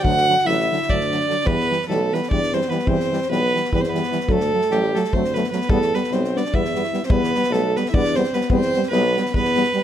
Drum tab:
SD |-ooooooo-ooooo|-oooo-oo-ooooo|-oooo-oo-ooooo|-o-oo-oo-ooooo|
BD |o-------o-----|o-------o-----|o-------o-----|o-------o-----|

SD |-ooooooo-ooooo|-oooo-oo-ooooo|-oooo-oo-oooo-|
BD |o-------o-----|o-------o-----|o-------o-----|